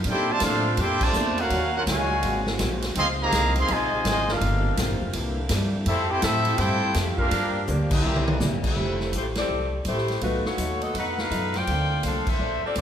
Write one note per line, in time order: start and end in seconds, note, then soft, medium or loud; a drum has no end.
0.00 1.49 A3 medium
0.00 ride medium
0.05 0.40 A#2 medium
0.05 1.49 C3 medium
0.05 0.30 A#3 medium
0.05 1.50 C4 medium
0.05 0.30 D4 medium
0.05 1.50 D4 medium
0.05 0.31 A4 medium
0.05 0.31 C5 medium
0.05 kick soft
0.09 0.29 E4 loud
0.09 0.29 G4 medium
0.09 0.30 A4 loud
0.09 0.29 C5 medium
0.09 0.29 G5 loud
0.32 0.44 D3 medium
0.32 0.44 F3 medium
0.32 0.43 A3 medium
0.32 0.43 F4 loud
0.32 0.43 C5 loud
0.32 0.43 D5 medium
0.32 0.43 A5 loud
0.40 0.77 A2 loud
0.40 0.67 A#3 medium
0.40 0.67 D4 medium
0.40 0.67 A4 medium
0.40 0.67 C5 medium
0.40 kick soft
0.40 snare medium
0.40 hi-hat pedal medium
0.40 ride medium
0.44 0.78 A3 medium
0.44 0.77 D4 loud
0.44 0.77 D4 medium
0.44 0.77 F4 medium
0.44 0.77 A4 medium
0.44 0.77 C5 medium
0.44 0.77 F5 loud
0.77 1.13 F2 medium
0.77 1.03 A#3 medium
0.77 1.03 D4 medium
0.77 1.03 E4 medium
0.77 1.02 G4 medium
0.77 1.03 A4 medium
0.77 1.04 C5 medium
0.77 1.03 C5 medium
0.77 1.03 G5 loud
0.77 kick soft
0.77 ride medium
1.01 1.39 D3 medium
1.01 1.39 F3 medium
1.01 1.39 A3 medium
1.01 1.39 F4 loud
1.01 1.39 C5 medium
1.01 1.39 D5 medium
1.01 1.39 A5 loud
1.01 kick medium
1.01 crash medium
1.13 1.49 E2 loud
1.13 1.39 A#3 medium
1.13 1.39 D4 medium
1.13 1.39 A4 medium
1.13 1.39 C5 medium
1.13 hi-hat pedal medium
1.38 1.75 A#3 medium
1.38 1.75 C#4 medium
1.38 1.75 F#4 medium
1.38 1.75 A#4 medium
1.38 1.75 F5 medium
1.38 1.75 F#5 loud
1.38 ride medium
1.50 1.86 D#2 medium
1.50 2.22 D#3 medium
1.50 1.75 D#3 soft
1.50 2.22 F#3 medium
1.50 1.76 F#3 medium
1.50 2.22 C#4 medium
1.50 1.76 C#4 soft
1.50 1.77 F4 medium
1.50 2.22 F#4 medium
1.50 kick soft
1.50 ride medium
1.76 1.81 A#3 medium
1.76 1.81 C#4 medium
1.76 1.82 C#4 medium
1.76 1.82 F4 medium
1.76 1.82 F#4 medium
1.76 1.82 A#4 medium
1.76 1.82 F#5 loud
1.87 2.22 C#2 loud
1.87 2.50 A#2 medium
1.87 2.22 C#3 medium
1.87 2.12 D#3 medium
1.87 2.12 F#3 medium
1.87 2.50 G#3 medium
1.87 2.12 C#4 medium
1.87 2.12 F4 medium
1.87 2.51 F#4 medium
1.87 2.22 C#5 medium
1.87 2.51 F5 medium
1.87 2.50 G#5 loud
1.87 kick soft
1.87 snare medium
1.87 hi-hat pedal medium
1.87 ride medium
2.22 2.58 G#1 medium
2.22 2.48 G#2 medium
2.22 2.95 C3 medium
2.22 2.48 F#3 medium
2.22 2.95 G#3 medium
2.22 2.95 A#3 medium
2.22 2.48 A#3 medium
2.22 2.49 C4 medium
2.22 2.95 F#4 medium
2.22 kick soft
2.22 ride medium
2.46 snare medium
2.59 2.95 A#1 loud
2.59 2.84 G#2 medium
2.59 2.84 F#3 medium
2.59 2.84 A#3 medium
2.59 2.84 C4 medium
2.59 kick soft
2.59 snare medium
2.59 hi-hat pedal medium
2.59 ride medium
2.82 snare medium
2.82 ride medium
2.95 3.31 C#2 loud
2.95 4.24 C3 medium
2.95 3.21 C#3 medium
2.95 4.24 F3 medium
2.95 3.07 F3 loud
2.95 3.22 F3 medium
2.95 3.06 G#3 medium
2.95 4.24 C4 medium
2.95 3.06 C4 medium
2.95 3.22 C4 soft
2.95 4.24 D#4 medium
2.95 3.22 D#4 medium
2.95 3.08 G#4 medium
2.95 3.08 D#5 medium
2.95 3.08 F5 medium
2.95 3.08 C6 loud
2.95 kick soft
2.95 ride medium
3.21 3.54 C3 medium
3.21 3.54 F3 medium
3.21 3.54 A#3 loud
3.21 3.55 G#4 loud
3.21 3.55 D#5 medium
3.21 3.55 F5 medium
3.21 3.55 A#5 loud
3.32 3.67 C2 medium
3.32 3.57 C#3 medium
3.32 3.57 F3 medium
3.32 3.58 C4 medium
3.32 3.58 D#4 medium
3.32 kick soft
3.32 snare medium
3.32 hi-hat pedal medium
3.32 ride medium
3.56 3.69 F3 medium
3.56 3.69 G#3 medium
3.56 3.69 C4 medium
3.56 ride medium
3.60 3.71 G#4 loud
3.60 3.71 D#5 medium
3.60 3.71 F5 medium
3.60 3.71 C6 loud
3.68 4.03 A#1 medium
3.68 4.05 C3 medium
3.68 3.94 C#3 soft
3.68 4.05 F3 medium
3.68 3.94 F3 medium
3.68 4.05 G#3 medium
3.68 3.94 C4 medium
3.68 kick soft
3.68 ride medium
3.72 3.95 D#4 medium
3.72 4.07 F4 medium
3.72 4.07 C5 medium
3.72 4.06 D#5 medium
3.72 4.07 G#5 loud
4.05 4.40 G#1 loud
4.05 4.27 C3 medium
4.05 4.30 C#3 medium
4.05 4.30 F3 medium
4.05 4.27 F3 medium
4.05 4.27 G#3 medium
4.05 4.30 C4 medium
4.05 4.31 D#4 medium
4.05 4.28 F4 medium
4.05 4.28 D#5 medium
4.05 4.28 G#5 loud
4.05 kick soft
4.05 snare medium
4.05 hi-hat pedal medium
4.05 ride medium
4.09 4.29 C5 medium
4.28 4.77 A#3 medium
4.28 4.78 D4 medium
4.28 4.79 D4 medium
4.28 4.77 F4 medium
4.28 4.79 A4 medium
4.28 4.79 A#4 medium
4.28 4.79 F5 medium
4.28 snare medium
4.41 4.76 G1 loud
4.41 4.66 G2 medium
4.41 5.13 C3 medium
4.41 4.67 F3 medium
4.41 5.13 G3 medium
4.41 5.85 A#3 medium
4.41 4.67 A#3 medium
4.41 4.67 C4 medium
4.41 5.13 F4 medium
4.41 kick soft
4.41 ride medium
4.77 4.89 A#1 medium
4.77 5.03 G2 medium
4.77 5.03 F3 medium
4.77 5.03 A#3 medium
4.77 5.03 C4 medium
4.77 kick soft
4.77 snare medium
4.77 hi-hat pedal medium
4.77 ride medium
4.89 5.01 G1 medium
5.01 5.13 F1 medium
5.13 5.49 C2 medium
5.13 5.38 C3 medium
5.13 5.86 D3 medium
5.13 5.39 E3 medium
5.13 5.39 A#3 medium
5.13 5.86 C4 medium
5.13 5.39 D4 medium
5.13 7.30 E4 medium
5.13 kick soft
5.13 ride medium
5.49 5.85 G2 loud
5.49 5.74 C3 medium
5.49 5.75 E3 medium
5.49 5.75 A#3 medium
5.49 5.75 D4 medium
5.49 kick soft
5.49 snare medium
5.49 hi-hat pedal medium
5.49 ride medium
5.85 6.21 F2 medium
5.85 8.02 F3 medium
5.85 6.11 F3 soft
5.85 6.07 A3 medium
5.85 7.30 A3 medium
5.85 6.12 A3 soft
5.85 6.07 C4 medium
5.85 6.09 C4 loud
5.85 6.07 E4 medium
5.85 6.12 E4 medium
5.85 7.30 G4 medium
5.85 6.09 G4 medium
5.85 6.12 G4 medium
5.85 6.09 A4 medium
5.85 6.09 E5 loud
5.85 kick soft
5.85 ride medium
6.08 6.20 C4 medium
6.08 6.19 E4 medium
6.08 6.23 E4 loud
6.08 6.22 G4 loud
6.08 6.23 A4 loud
6.08 6.23 C5 loud
6.08 6.23 G5 loud
6.21 6.57 A2 loud
6.21 6.47 F3 medium
6.21 6.58 A3 medium
6.21 6.47 A3 medium
6.21 6.56 C4 medium
6.21 6.60 C4 medium
6.21 6.56 E4 medium
6.21 6.48 E4 medium
6.21 6.48 G4 medium
6.21 6.60 G4 medium
6.21 6.58 A4 medium
6.21 6.59 E5 loud
6.21 kick soft
6.21 snare medium
6.21 hi-hat pedal medium
6.21 ride medium
6.45 ride medium
6.56 6.94 G2 medium
6.56 6.83 F3 medium
6.56 6.83 A3 medium
6.56 6.94 C4 medium
6.56 6.94 E4 medium
6.56 6.95 E4 loud
6.56 6.84 E4 medium
6.56 6.94 G4 medium
6.56 6.84 G4 medium
6.56 6.95 A4 medium
6.56 6.95 C5 loud
6.56 6.95 G5 loud
6.56 kick soft
6.56 ride medium
6.94 7.30 F2 loud
6.94 7.20 F3 medium
6.94 7.20 A3 medium
6.94 7.20 E4 medium
6.94 7.20 G4 medium
6.94 kick soft
6.94 snare medium
6.94 hi-hat pedal medium
6.94 ride medium
7.15 7.63 A#3 medium
7.15 7.62 D4 medium
7.15 7.65 D4 medium
7.15 7.63 F4 medium
7.15 7.64 G4 medium
7.15 7.64 A#4 medium
7.15 7.64 F5 loud
7.15 kick medium
7.31 7.56 G2 soft
7.31 7.66 G2 medium
7.31 7.57 F3 medium
7.31 8.75 A#3 medium
7.31 7.57 A#3 medium
7.31 8.03 D4 medium
7.31 7.57 D4 medium
7.31 8.75 G4 loud
7.31 ride medium
7.67 8.03 D2 loud
7.67 7.92 G2 medium
7.67 7.93 F3 medium
7.67 7.93 A#3 medium
7.67 7.93 D4 medium
7.67 hi-hat pedal medium
7.67 mid tom medium
7.90 8.36 G3 medium
7.90 8.36 A#3 medium
7.90 8.37 C4 medium
7.90 8.36 E4 medium
7.90 8.38 G4 medium
7.90 8.37 A#4 medium
7.90 8.37 E5 medium
7.90 kick medium
7.90 crash medium
8.03 8.39 C2 medium
8.03 8.28 C3 medium
8.03 8.76 E3 medium
8.03 8.29 G3 medium
8.03 8.29 A#3 medium
8.03 8.76 C4 medium
8.03 8.29 E4 medium
8.16 mid tom medium
8.28 mid tom loud
8.40 8.53 A#1 loud
8.40 8.65 C3 medium
8.40 8.65 G3 medium
8.40 8.65 A#3 medium
8.40 8.65 E4 medium
8.40 snare medium
8.40 hi-hat pedal medium
8.53 8.64 G1 medium
8.64 8.76 E1 medium
8.64 9.10 G3 medium
8.64 9.10 C4 medium
8.64 9.11 E4 medium
8.64 9.10 A4 medium
8.64 kick medium
8.64 crash medium
8.76 9.12 F1 medium
8.76 9.01 F3 soft
8.76 9.32 F3 soft
8.76 9.31 A3 soft
8.76 9.02 A3 soft
8.76 9.31 C4 soft
8.76 9.32 E4 soft
8.76 9.02 E4 soft
8.76 9.32 G4 soft
8.76 9.02 G4 soft
9.00 snare soft
9.12 9.48 A1 medium
9.12 9.38 F3 medium
9.12 9.39 A3 medium
9.12 9.39 E4 medium
9.12 9.26 E4 medium
9.12 9.39 G4 medium
9.12 9.26 G4 medium
9.12 9.26 C5 medium
9.12 kick soft
9.12 hi-hat pedal medium
9.12 ride medium
9.17 9.27 A3 medium
9.35 9.72 C4 medium
9.35 9.71 G4 medium
9.35 9.72 A4 medium
9.35 9.71 D5 medium
9.35 snare medium
9.35 ride medium
9.49 9.84 C2 medium
9.49 9.74 F3 medium
9.49 9.74 A3 soft
9.49 9.75 E4 medium
9.49 9.75 G4 soft
9.85 10.21 A1 loud
9.85 10.11 F3 medium
9.85 10.20 A3 medium
9.85 10.11 A3 medium
9.85 10.20 E4 medium
9.85 10.12 E4 medium
9.85 10.20 G4 medium
9.85 10.12 G4 medium
9.85 10.20 C5 medium
9.85 kick soft
9.85 hi-hat pedal medium
9.85 ride medium
9.98 snare soft
10.08 snare soft
10.08 ride soft
10.21 10.43 B1 medium
10.21 10.47 B2 soft
10.21 11.23 A3 medium
10.21 10.48 A3 soft
10.21 10.45 A3 medium
10.21 11.23 B3 medium
10.21 11.23 D#4 medium
10.21 10.47 D#4 soft
10.21 10.45 D#4 medium
10.21 10.48 F4 medium
10.21 11.24 F#4 medium
10.21 10.45 F#4 medium
10.21 10.45 B4 medium
10.21 11.24 F5 medium
10.21 kick soft
10.21 ride medium
10.45 10.81 B3 medium
10.45 10.81 F#4 medium
10.45 10.81 A4 medium
10.45 10.83 C#5 medium
10.45 muted upright bass stroke soft
10.45 snare medium
10.58 10.93 D#2 medium
10.58 10.83 B2 medium
10.58 10.84 A3 medium
10.58 10.84 D#4 medium
10.58 10.84 F4 medium
10.58 kick soft
10.58 hi-hat pedal medium
10.58 ride medium
10.81 10.95 B3 medium
10.81 10.95 F#4 medium
10.81 10.95 A4 medium
10.81 10.95 D#5 medium
10.81 ride soft
10.94 11.30 F2 medium
10.94 11.19 B2 medium
10.94 11.20 A3 soft
10.94 11.20 D#4 soft
10.94 11.18 D#4 medium
10.94 11.20 F4 medium
10.94 11.18 A4 medium
10.94 11.18 B4 medium
10.94 11.18 F#5 medium
10.94 kick soft
10.94 ride medium
11.18 11.55 D#4 medium
11.18 11.55 A4 medium
11.18 11.55 B4 loud
11.18 11.55 F5 loud
11.18 snare medium
11.30 11.66 F#2 loud
11.30 11.55 B2 medium
11.30 11.55 A3 medium
11.30 11.56 D#4 medium
11.30 11.56 F4 medium
11.30 kick soft
11.30 hi-hat pedal soft
11.30 ride medium
11.54 12.05 F4 medium
11.54 12.04 C5 medium
11.54 12.05 D5 medium
11.54 12.05 G5 loud
11.54 snare soft
11.54 ride soft
11.67 12.03 D2 medium
11.67 12.23 A3 medium
11.67 12.23 A#3 soft
11.67 11.93 A#3 soft
11.67 12.23 C4 soft
11.67 11.93 D4 soft
11.67 12.23 D4 soft
11.67 12.24 F4 medium
11.67 11.93 A4 soft
11.67 11.93 C5 soft
11.67 kick soft
11.67 ride medium
12.03 12.25 C2 medium
12.03 12.28 A#3 medium
12.03 12.29 D4 medium
12.03 12.27 D4 medium
12.03 12.29 A4 medium
12.03 12.26 A4 medium
12.03 12.29 C5 medium
12.03 12.26 C5 medium
12.03 12.26 F5 medium
12.03 kick soft
12.03 hi-hat pedal medium
12.03 ride medium
12.27 12.64 D4 loud
12.27 12.64 A4 medium
12.27 12.64 C5 loud
12.27 12.65 E5 loud
12.27 muted upright bass stroke soft
12.27 kick medium
12.27 crash medium
12.39 12.61 A#1 medium
12.39 12.64 A#3 medium
12.39 12.65 D4 soft
12.39 12.65 A4 medium
12.39 12.66 C5 medium
12.63 12.76 C4 medium
12.63 12.77 F4 medium
12.63 12.77 A4 medium
12.63 12.77 D5 medium
12.63 muted upright bass stroke soft
12.75 12.81 C2 loud
12.75 12.81 A#3 medium
12.75 12.81 C4 medium
12.75 12.81 D4 medium
12.75 12.81 A4 medium
12.75 12.81 C5 medium
12.75 12.81 D5 loud
12.75 kick soft
12.75 hi-hat pedal medium
12.75 ride medium